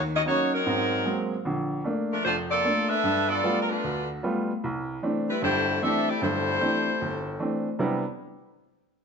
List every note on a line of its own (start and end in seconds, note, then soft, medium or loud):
0.00 0.21 D#2 medium
0.16 0.22 C#4 medium
0.16 0.21 F#4 medium
0.16 0.21 A#4 medium
0.16 0.22 D#5 loud
0.26 0.53 F#3 soft
0.26 0.52 A#3 medium
0.26 0.54 C#4 soft
0.26 0.54 D#4 medium
0.26 0.52 D#4 medium
0.26 0.52 F#4 medium
0.26 0.51 C#5 loud
0.55 1.29 F#3 medium
0.55 1.29 C4 medium
0.55 1.29 D#4 medium
0.55 1.29 A#4 loud
0.67 1.01 G#2 medium
0.67 1.01 C4 medium
1.05 1.33 F#3 medium
1.05 1.33 G#3 soft
1.05 1.33 A#3 soft
1.05 1.33 C4 medium
1.45 1.80 A#1 medium
1.45 1.79 D3 medium
1.84 2.12 A3 soft
1.84 2.12 A#3 soft
1.84 2.12 D4 medium
2.13 2.25 F3 medium
2.13 2.24 A3 medium
2.13 2.24 D4 medium
2.13 2.25 A#4 medium
2.25 2.59 F1 medium
2.25 2.37 A3 medium
2.25 2.37 D4 medium
2.25 2.36 F4 medium
2.25 2.37 C5 loud
2.51 2.88 A#3 medium
2.51 2.88 F4 medium
2.51 2.88 A4 loud
2.51 2.88 D5 loud
2.64 2.91 A3 soft
2.64 2.92 A#3 soft
2.64 2.92 D4 medium
2.89 3.29 D4 medium
2.89 3.28 A4 medium
2.89 3.29 B4 loud
2.89 3.29 E5 loud
3.04 3.38 G2 medium
3.29 3.60 B3 medium
3.29 3.60 F4 medium
3.29 3.60 A4 medium
3.29 3.60 D5 loud
3.43 3.70 G3 soft
3.43 3.70 A3 soft
3.43 3.71 B3 soft
3.43 3.71 F4 medium
3.62 3.70 A#4 medium
3.70 4.09 A3 medium
3.70 4.09 D4 medium
3.70 4.09 F4 medium
3.70 4.09 B4 medium
3.84 4.18 D2 medium
4.23 4.50 G3 medium
4.23 4.50 A3 soft
4.23 4.50 B3 medium
4.23 4.50 F4 medium
4.64 4.97 C2 medium
5.02 5.29 E3 medium
5.02 5.29 A3 soft
5.02 5.30 C4 soft
5.02 5.30 D4 medium
5.30 5.41 G3 medium
5.30 5.42 C4 medium
5.30 5.41 E4 medium
5.30 5.41 B4 medium
5.42 5.76 G1 medium
5.42 5.76 G2 medium
5.42 5.80 A3 medium
5.42 5.79 E4 medium
5.42 5.79 G4 loud
5.42 5.79 C5 loud
5.82 6.09 E3 medium
5.82 6.09 A3 soft
5.82 6.09 C4 soft
5.82 6.09 D4 medium
5.82 6.08 D4 medium
5.82 6.08 G4 medium
5.82 6.08 A4 medium
5.82 6.08 E5 loud
6.10 6.22 A3 medium
6.10 6.22 E4 medium
6.10 6.22 G4 medium
6.10 6.22 D5 medium
6.22 6.55 G1 medium
6.22 6.55 G2 medium
6.22 7.37 A3 medium
6.22 7.37 E4 medium
6.22 7.37 G4 medium
6.22 7.37 C5 loud
6.61 6.88 E3 medium
6.61 6.88 A3 soft
6.61 6.88 C4 soft
6.61 6.88 D4 medium
7.01 7.35 G1 medium
7.39 7.66 E3 medium
7.39 7.67 A3 soft
7.39 7.67 C4 soft
7.39 7.67 D4 medium
7.79 8.02 C3 medium
7.79 8.02 G3 medium
7.79 8.03 B3 medium
7.79 8.03 D4 medium
7.79 8.03 E4 medium